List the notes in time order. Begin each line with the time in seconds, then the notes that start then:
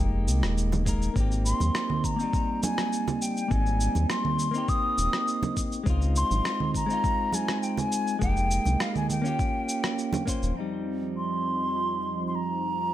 Already playing: G#3 A#3 D#4 G4
0.00 F1
0.28 C2, cabasa
0.43 D#1, cross-stick, cabasa
0.58 cabasa
0.72 high conga, low conga, cabasa
0.85 G#3 A#3 D#4 A#4, kick, cabasa
1.02 cabasa
1.14 G#1 A#3 C4, kick, cabasa
1.18 D#4 G4
1.31 cabasa
1.46 C6, cabasa
1.60 D#2, high conga, cabasa
1.75 cross-stick, cabasa
1.90 low conga
2.04 A#5, kick, cabasa
2.16 A#3 C4, cabasa
2.21 G3 D#4
2.33 kick, cabasa
2.63 G#5, high conga, cabasa
2.78 cross-stick, cabasa
2.93 cabasa
3.08 low conga, cabasa
3.22 G5, cabasa
3.37 cabasa
3.48 G#1 A#3 C4 G#5, kick, cabasa
3.53 G3 D#4
3.66 cabasa
3.81 cabasa
3.95 D#2, high conga, cabasa
4.10 C6, cross-stick, cabasa
4.25 low conga
4.39 cabasa
4.51 A#3 C4, cabasa
4.56 D#4 G4
4.69 D#6, kick, cabasa
4.98 D#1, cabasa
5.13 cross-stick, cabasa
5.28 cabasa
5.43 high conga, low conga, cabasa
5.57 kick, cabasa
5.72 cabasa
5.84 C#2 G#3 C4, kick, cabasa
5.88 D#4 F4
6.02 cabasa
6.16 C6, cabasa
6.31 G#1, high conga, cabasa
6.45 cross-stick, cabasa
6.60 low conga
6.75 A#5, kick, cabasa
6.86 G#3 C4, cabasa
6.91 D#4 F4
7.04 kick, cabasa
7.32 G#5, high conga, cabasa
7.48 cross-stick, cabasa
7.63 G5, cabasa
7.77 G#5, low conga, cabasa
7.92 cabasa
8.07 cabasa
8.19 F1 G#3 A#3 G5, kick, cabasa
8.23 D#4 G4
8.37 cabasa
8.51 cabasa
8.65 C2, high conga, cabasa
8.80 F5, cross-stick, cabasa
8.96 G#5, low conga, cabasa
9.10 G5, low conga, cabasa
9.22 A#3 C#4, cabasa
9.26 F4 G4
9.39 kick, cabasa
9.69 cabasa
9.84 cross-stick, cabasa
9.98 cabasa
10.13 high conga, low conga, cabasa
10.26 A#3 C#4 F4 C5, kick, cabasa
10.43 D#1, cabasa
10.54 F2 F3 C4 D#4
10.58 G3 D#4
11.17 C6
12.28 C6
12.35 A#5